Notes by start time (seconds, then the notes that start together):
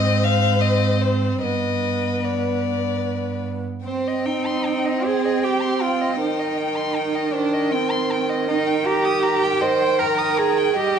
Already playing: G#2 C4 C5 D#5
0.24 F5
0.61 C4 D#5
1.02 C5
1.42 G2 B3 B4 D#5
2.24 D5
3.86 C4 C5 G5
4.07 D#5
4.26 D#4 G5
4.46 C6
4.66 G5
4.85 D#5
5.05 G#4 C5
5.25 D#5
5.43 G4 G5
5.62 C6
5.81 F4 G5
6.01 D#5
6.20 D#3 D#4 C5
6.39 D#5
6.57 G5
6.77 C6
6.96 G5
7.15 D#5
7.34 D4 C5
7.53 D#5
7.72 C4 G5
7.91 C6
8.11 G5
8.29 D#5
8.48 D#4 D#5 G5
8.67 G5
8.86 G4 A#5
9.05 D#6
9.23 A#5
9.43 G5
9.61 C5 D#5
9.80 G5
9.99 A#4 A#5
10.18 D#6
10.37 G#4 A#5
10.58 G5
10.76 G3 G4 D#5